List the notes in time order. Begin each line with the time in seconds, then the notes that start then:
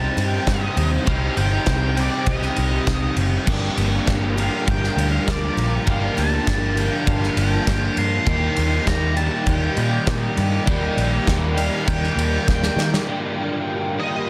Already playing: C3 G3 C4 D#4 G4 C5 G5 A5
0.17 G2 D#4, ride
0.27 G5
0.47 G2 C4 D#5, kick, snare, ride
0.77 D#2 C4, ride
1.05 C2 C3 G3 C4 D#4 G4 F5, kick, ride
1.37 G1 D#4 G5, ride
1.66 C2 C4, kick, snare, ride
1.96 G3 C4 D#4 G4, ride
2.00 C3 D5
2.26 C2 G4 D#5, kick, ride
2.42 snare
2.56 C2 D#4, ride
2.87 C2, kick, snare, ride
3.16 F#1 C4, ride
3.46 G1 G2 D3 F3 G3 A#3 D4 F4 G4 A#4, kick, crash
3.78 G1 A#3, ride
4.07 G1 F3, kick, snare, ride
4.35 D3 G3 A#3 D4 G4, ride
4.40 G2 F5
4.68 G1 G4 G5, kick, ride
4.84 snare
4.96 D2 D4, ride
5.10 F5
5.28 D2 F3 D5, kick, snare, ride
5.57 A#1 A#3, ride
5.85 G1 G2 D3 F3 G3 A#3 D4 G4 A5, kick, ride
5.91 F5
6.17 D2 A#3 A5, ride
6.47 G1 F3, kick, snare, ride
6.75 D3 G3 A#3 D4 G4 G5, ride
6.79 G2
7.07 G1 G4 F5, kick, ride
7.23 snare
7.37 G1 D4 G5, ride
7.67 G1 F3, kick, snare, ride
7.97 G2 A#3 C6, ride
8.24 D#2 D#3 G3 A#3 D#4 G4 D5, kick, ride
8.29 G5
8.56 D#2, ride
8.87 D#2 A#3 A#5, kick, snare, ride
9.16 G3 A#3 D#4 G4 A5, ride
9.20 D#3
9.46 D#2 G4 G5, kick, ride
9.77 A#2, ride
10.07 A#2 A#3, kick, snare, ride
10.37 G2 A#3, ride
10.67 D#2 D#3 G3 A#3 D#4 G4, kick, ride
10.97 A#1, ride
11.27 D#2 A#3, kick, snare, ride
11.56 G3 A#3 D#4 G4 F5, ride
11.60 D#3
11.88 D#2 G4 G5, kick, ride
12.04 snare
12.16 D#2, ride
12.47 D#2 A#3 G5, kick, snare
12.63 snare
12.76 D#3 A#3, snare
12.94 snare
13.07 G2 D3 G3 A#3 D4 F4 G4 A#4 G5
13.98 G2 D3 G3 A#3 D4 G4 D#5